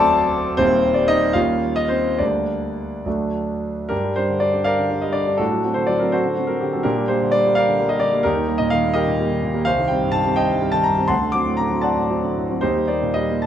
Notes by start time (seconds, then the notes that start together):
Already playing: D2 F#3 A3 C4 A4 C5 D5 A5 C6 D6
0.57 D#1 D#2 G3 A#3 C4 C5
0.94 D5
1.08 D#4 D#5
1.33 D#2 G3 A#3 C#4 F4 F5
1.76 D#5
1.88 C4 C5
2.18 D2 G3 A#3 D4 D5
3.06 D2 F#3 A3 D4
3.89 G2 D4 G4 A#4
4.04 G3
4.16 G3 D4 C5
4.30 D3
4.40 G3 D5
4.53 G3 D4
4.64 A#4 D5 F5
4.79 D3
4.90 G3 D4
5.02 G3 D#5
5.13 D3 D5
5.27 G3 D4
5.37 A2 D4 F#4 A4
5.52 F#3
5.64 F#3 C4
5.74 D3 C5
5.87 F#3 D5
6.00 F#3 C4 A#4
6.12 F#4 A4 C5
6.25 D3
6.37 F#3 C4
6.47 F#3 A#4
6.61 D3 G4
6.73 F#3 C4 A4
6.83 A#2 D4 G4 A#4
6.97 G3
7.08 G3 A#3 C5
7.22 D3
7.32 G3 D5
7.46 G3 A#3
7.55 A#4 D5 F5
7.68 D3
7.80 G3 A#3
7.89 G3 D#5
8.00 D3 D5
8.13 G3 A#3
8.23 D#2 D#4 G4 A#4
8.36 D#3
8.47 G3 A#3
8.58 A#2 D#5
8.70 D#3 F5
8.83 G3 A#3
8.94 G4 A#4 D#5
9.07 A#2
9.20 G3 A#3
9.31 D#3
9.43 A#2
9.54 G3 A#3
9.65 C2 C5 F5
9.79 D#3
9.88 G3 C4 G5
10.01 G2
10.12 D#3 A5
10.26 G3 C4
10.36 C5 D#5 G5
10.50 G2
10.62 G3 C4
10.72 D#3 A5
10.84 G2 A#5
10.97 G3 C4
11.08 D2 F#5 A5 C6
11.22 D3
11.32 F#3 C4 D6
11.46 A2
11.57 D3 A#5
11.70 F#3 C4
11.81 D5 F#5 A5
11.97 A2
12.10 F#3 C4
12.24 D3
12.37 A2
12.50 F#3 C4
12.61 D#2 D#4 G4 C5
12.76 G3
12.88 G3 A#3 D5
13.03 A#2
13.14 G3 D#5
13.30 G3 A#3
13.42 A5